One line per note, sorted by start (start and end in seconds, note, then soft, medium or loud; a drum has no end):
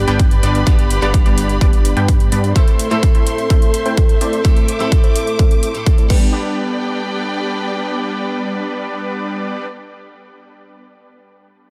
0.00 0.63 G2 medium
0.00 0.64 G3 medium
0.00 0.64 B3 medium
0.00 0.64 D4 medium
0.00 0.64 G4 medium
0.00 2.52 G4 medium
0.00 2.52 B4 medium
0.00 2.52 D5 medium
0.00 2.52 B5 medium
0.00 impact medium
0.08 0.41 G1 medium
0.08 0.40 G3 medium
0.08 0.40 B3 medium
0.08 0.40 D4 medium
0.08 0.40 B4 medium
0.08 0.40 G5 loud
0.08 closed hi-hat soft
0.19 kick loud
0.19 closed hi-hat medium
0.31 closed hi-hat soft
0.43 0.64 G1 loud
0.43 0.64 G3 medium
0.43 0.64 B3 medium
0.43 0.64 D4 medium
0.43 0.64 B4 medium
0.43 0.64 D5 loud
0.43 closed hi-hat medium
0.55 closed hi-hat soft
0.66 1.00 G1 loud
0.66 0.99 G2 medium
0.66 0.99 G3 medium
0.66 0.99 B3 medium
0.66 0.99 D4 medium
0.66 1.00 G4 medium
0.66 0.99 B4 medium
0.66 0.99 D5 loud
0.66 kick loud
0.66 closed hi-hat medium
0.79 closed hi-hat soft
0.90 closed hi-hat medium
1.01 1.23 G1 medium
1.01 2.52 G2 medium
1.01 2.53 G3 medium
1.01 1.23 G3 medium
1.01 1.23 B3 medium
1.01 2.53 B3 medium
1.01 1.23 D4 medium
1.01 2.53 D4 medium
1.01 2.53 G4 medium
1.01 1.23 B4 medium
1.01 1.23 D5 medium
1.01 closed hi-hat soft
1.14 kick loud
1.14 closed hi-hat medium
1.26 1.59 G1 medium
1.26 1.58 G3 medium
1.26 1.58 B3 medium
1.26 1.58 D4 medium
1.26 1.58 B4 medium
1.26 1.58 D5 loud
1.26 closed hi-hat soft
1.38 closed hi-hat medium
1.49 closed hi-hat soft
1.61 1.94 G1 loud
1.61 1.94 G3 loud
1.61 1.94 B3 medium
1.61 1.94 D4 medium
1.61 1.94 B4 medium
1.61 1.94 D5 loud
1.61 kick loud
1.61 closed hi-hat medium
1.73 closed hi-hat soft
1.85 closed hi-hat medium
1.97 2.30 G2 medium
1.97 2.29 G3 medium
1.97 2.29 B3 medium
1.97 2.29 D4 medium
1.97 2.29 B4 medium
1.97 2.29 G5 loud
1.97 closed hi-hat soft
2.08 kick loud
2.08 closed hi-hat medium
2.20 closed hi-hat soft
2.32 2.53 G2 loud
2.32 2.53 G3 medium
2.32 2.53 B3 medium
2.32 2.53 D4 medium
2.32 2.53 B4 medium
2.32 2.53 D5 loud
2.32 closed hi-hat medium
2.44 closed hi-hat soft
2.55 2.88 A2 medium
2.55 2.88 A3 medium
2.55 2.88 C4 medium
2.55 2.88 E4 medium
2.55 2.89 E4 medium
2.55 6.06 A4 medium
2.55 2.89 A4 medium
2.55 2.88 C5 medium
2.55 6.07 C5 medium
2.55 6.06 E5 medium
2.55 2.88 E5 loud
2.55 4.43 C6 medium
2.55 kick loud
2.55 closed hi-hat medium
2.68 closed hi-hat soft
2.79 closed hi-hat medium
2.90 4.41 A2 medium
2.90 4.42 A3 medium
2.90 3.12 A3 medium
2.90 4.42 C4 medium
2.90 3.12 C4 medium
2.90 3.12 E4 medium
2.90 4.42 E4 medium
2.90 4.42 A4 medium
2.90 3.12 C5 medium
2.90 3.12 E5 loud
2.90 closed hi-hat soft
3.03 kick loud
3.03 closed hi-hat medium
3.15 3.47 A3 medium
3.15 3.47 C4 medium
3.15 3.47 E4 medium
3.15 3.47 C5 medium
3.15 3.47 E5 medium
3.15 closed hi-hat soft
3.27 closed hi-hat medium
3.38 closed hi-hat soft
3.50 3.83 A3 loud
3.50 3.83 C4 medium
3.50 3.83 E4 medium
3.50 3.83 C5 medium
3.50 3.83 E5 loud
3.50 kick loud
3.50 closed hi-hat medium
3.62 closed hi-hat soft
3.74 closed hi-hat medium
3.86 4.18 A3 medium
3.86 4.18 C4 medium
3.86 4.18 E4 medium
3.86 4.18 C5 medium
3.86 4.18 G5 loud
3.86 closed hi-hat soft
3.97 kick loud
3.97 closed hi-hat medium
4.09 closed hi-hat soft
4.21 4.42 A3 medium
4.21 4.42 C4 medium
4.21 4.42 E4 medium
4.21 4.42 C5 medium
4.21 4.42 D5 loud
4.21 closed hi-hat medium
4.33 closed hi-hat soft
4.44 4.77 A2 medium
4.44 4.77 A3 medium
4.44 4.77 C4 medium
4.44 4.77 E4 medium
4.44 4.78 A4 medium
4.44 4.77 C5 medium
4.44 4.77 E5 loud
4.44 6.08 D6 medium
4.44 kick loud
4.44 closed hi-hat medium
4.57 closed hi-hat soft
4.68 closed hi-hat medium
4.79 5.72 A2 medium
4.79 5.72 A3 medium
4.79 5.01 A3 medium
4.79 5.01 C4 medium
4.79 5.72 C4 medium
4.79 5.01 E4 medium
4.79 5.73 E4 medium
4.79 5.73 A4 medium
4.79 5.01 C5 medium
4.79 5.01 E5 loud
4.79 closed hi-hat soft
4.92 kick loud
4.92 closed hi-hat medium
5.04 5.36 A3 medium
5.04 5.36 C4 medium
5.04 5.36 E4 medium
5.04 5.36 C5 medium
5.04 5.36 E5 medium
5.04 closed hi-hat soft
5.16 closed hi-hat medium
5.27 closed hi-hat soft
5.39 5.72 A3 loud
5.39 5.72 C4 medium
5.39 5.72 E4 medium
5.39 5.72 C5 medium
5.39 5.72 E5 loud
5.39 kick loud
5.39 closed hi-hat medium
5.51 closed hi-hat soft
5.63 closed hi-hat medium
5.74 6.07 A2 medium
5.74 6.07 A3 medium
5.74 6.07 C4 medium
5.74 6.07 E4 medium
5.74 6.08 A4 medium
5.74 closed hi-hat soft
5.86 kick loud
5.86 closed hi-hat medium
5.98 6.10 A3 medium
5.98 6.10 C4 medium
5.98 6.10 E4 medium
5.98 6.10 C5 medium
5.98 6.09 D5 loud
5.98 closed hi-hat soft
6.08 9.64 G3 medium
6.08 9.66 G3 medium
6.08 9.66 B3 medium
6.08 9.66 D4 medium
6.08 9.67 D4 medium
6.08 9.66 G4 medium
6.08 9.68 G4 medium
6.08 9.66 B4 medium
6.08 9.66 D5 medium
6.08 9.66 G5 medium
6.08 kick loud
6.08 crash medium